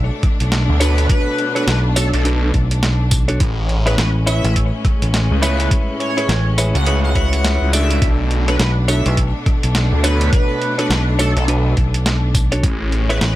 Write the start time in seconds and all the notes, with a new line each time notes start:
Already playing: B2 A3 D4
0.23 kick, cross-stick, closed hi-hat
0.40 B1, closed hi-hat
0.52 snare, closed hi-hat
0.69 D2
0.80 D4 F#4 A4 B4 C#5, closed hi-hat, tambourine
0.98 closed hi-hat
1.09 B4, kick, closed hi-hat
1.38 closed hi-hat
1.55 D4 F#4 A4 B4 C#5, cross-stick, closed hi-hat
1.67 B1 B4, snare, closed hi-hat
1.96 D4 F#4 A4 C#5, tambourine
2.14 B1 A4, closed hi-hat
2.25 D4 F#4 A4 B4, closed hi-hat
2.54 B1, kick, closed hi-hat
2.71 closed hi-hat
2.83 snare, closed hi-hat
3.11 kick, closed hi-hat, tambourine
3.28 D4 F#4 A4 C#5, closed hi-hat
3.39 A1 A2 G#3 C#4, kick, closed hi-hat
3.69 closed hi-hat
3.86 E4 G#4 B4 C#5, cross-stick, closed hi-hat
3.98 A1 B4, snare, closed hi-hat
4.27 E4 G#4 B4 C#5 E5, tambourine
4.44 A1, closed hi-hat
4.56 kick, closed hi-hat
4.85 kick, cross-stick, closed hi-hat
5.02 A1, closed hi-hat
5.14 snare, closed hi-hat
5.31 C#2
5.42 E4 G#4 B4 C#5, closed hi-hat, tambourine
5.60 closed hi-hat
5.71 kick, closed hi-hat
6.00 C#5, closed hi-hat
6.17 E4 G#4 B4 C#5, cross-stick, closed hi-hat
6.29 A1, snare, closed hi-hat
6.58 E4 G#4 B4 C#5, closed hi-hat, tambourine
6.74 C#2 F#5, closed hi-hat
6.86 E4 G#4 B4 C#5, closed hi-hat
7.04 F#5
7.15 E4 G#4 B4 C#5, kick, closed hi-hat
7.33 closed hi-hat
7.45 snare, closed hi-hat
7.62 C#2
7.73 D4 F#4 A4 D5 E5, closed hi-hat, tambourine
7.91 closed hi-hat
8.01 B1 B2 A3 D4, kick, closed hi-hat
8.31 closed hi-hat
8.48 D4 F#4 A4 B4 C#5, cross-stick, closed hi-hat
8.60 B1 B4, snare, closed hi-hat
8.88 D4 F#4 A4 C#5 E5, tambourine
9.06 B1, closed hi-hat
9.17 kick, closed hi-hat
9.46 kick, cross-stick, closed hi-hat
9.63 B1, closed hi-hat
9.75 snare, closed hi-hat
9.92 D2
10.04 D4 F#4 A4 B4 C#5, closed hi-hat, tambourine
10.21 closed hi-hat
10.33 B4, kick, closed hi-hat
10.62 closed hi-hat
10.78 D4 F#4 A4 B4 C#5, cross-stick, closed hi-hat
10.90 B1 B4, snare, closed hi-hat
11.19 D4 F#4 A4 C#5, tambourine
11.37 B1 A4, closed hi-hat
11.48 D4 F#4 A4 B4, closed hi-hat
11.77 B1, kick, closed hi-hat
11.94 closed hi-hat
12.06 snare, closed hi-hat
12.35 kick, closed hi-hat, tambourine
12.52 D4 F#4 A4 C#5, closed hi-hat
12.63 A1 A2 G#3 C#4, kick, closed hi-hat
12.92 closed hi-hat
13.09 E4 G#4 B4 C#5, cross-stick, closed hi-hat
13.21 A1 B4, snare, closed hi-hat